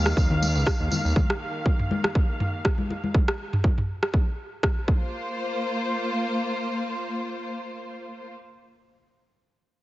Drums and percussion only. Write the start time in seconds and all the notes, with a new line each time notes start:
0.06 cross-stick, tambourine, muted conga
0.17 kick, tambourine
0.30 low conga
0.42 tambourine, muted conga, high conga
0.55 tambourine
0.67 kick, cross-stick, tambourine
0.91 tambourine, muted conga, high conga, low conga
1.06 tambourine
1.16 kick, high conga, low conga
1.30 cross-stick, muted conga
1.66 kick, muted conga
1.79 mid tom
1.91 high conga
2.04 cross-stick, muted conga
2.15 kick
2.40 mid tom, muted conga
2.65 kick, cross-stick
2.78 high conga
2.90 muted conga, high conga
3.04 high conga
3.15 kick
3.28 cross-stick
3.53 mid tom
3.64 kick
3.78 mid tom
4.03 cross-stick
4.14 kick
4.63 kick, cross-stick
4.88 kick